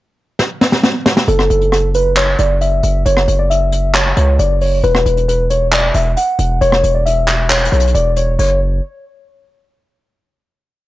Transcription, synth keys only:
1.28 1.70 A4 medium
1.72 1.89 A4 medium
1.95 2.12 B4 medium
2.17 2.34 C#5 medium
2.39 2.56 D5 loud
2.61 3.03 E5 medium
3.06 3.37 C#5 medium
3.39 3.47 D5 medium
3.50 3.92 E5 medium
3.95 4.12 C#5 medium
4.17 4.34 C#5 medium
4.39 4.56 D5 medium
4.61 4.78 C#5 medium
4.83 5.25 B4 loud
5.28 5.45 B4 medium
5.50 5.67 C#5 medium
5.73 5.89 D5 medium
5.95 6.12 E5 medium
6.17 6.59 F#5 medium
6.61 6.93 C#5 loud
6.94 7.03 D5 medium
7.06 7.47 E5 medium
7.50 7.67 C#5 medium
7.72 7.89 C#5 medium
7.95 8.12 D5 medium
8.17 8.34 C#5 medium
8.39 8.60 C#5 medium

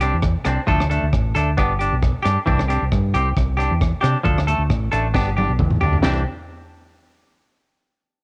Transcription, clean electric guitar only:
0.01 0.16 C4 soft
0.01 0.16 D4 soft
0.01 0.15 G4 medium
0.45 0.61 C4 soft
0.45 0.60 D4 soft
0.45 muted clean electric guitar stroke medium
0.67 0.82 F3 medium
0.67 0.82 A3 medium
0.67 0.83 D4 medium
0.67 0.83 A4 medium
0.90 1.05 A3 medium
0.90 1.05 D4 medium
0.90 1.05 A4 medium
1.35 1.50 A3 soft
1.35 1.50 D4 medium
1.35 1.49 A4 medium
1.57 1.72 B3 medium
1.57 1.72 D4 medium
1.57 1.72 G4 medium
1.79 1.95 D4 soft
1.79 1.94 G4 medium
2.22 2.39 D4 soft
2.22 2.38 G4 medium
2.46 2.61 E3 medium
2.46 2.61 C4 medium
2.46 2.61 D4 medium
2.46 muted clean electric guitar stroke medium
2.68 2.84 C4 medium
2.68 2.84 D4 medium
2.68 2.83 G4 medium
3.14 3.29 C4 medium
3.14 3.28 G4 medium
3.14 muted clean electric guitar stroke medium
3.57 3.73 C4 soft
3.57 3.73 D4 medium
3.57 3.72 G4 medium
4.01 4.17 C4 soft
4.01 4.17 D4 medium
4.01 4.16 G4 medium
4.23 4.39 F3 medium
4.23 4.39 D4 medium
4.23 4.39 A4 medium
4.23 muted clean electric guitar stroke medium
4.47 4.62 A3 medium
4.47 4.62 A4 medium
4.47 muted clean electric guitar stroke medium
4.92 5.07 A3 soft
4.92 5.07 D4 medium
4.92 5.06 A4 medium
5.14 5.28 B3 medium
5.14 5.29 D4 loud
5.14 5.29 G4 loud
5.37 5.52 D4 medium
5.37 5.51 G4 medium
5.81 5.97 D4 soft
5.81 5.95 G4 medium
6.02 6.21 E3 medium
6.02 6.22 C4 medium
6.02 6.22 D4 medium
6.02 6.23 G4 medium

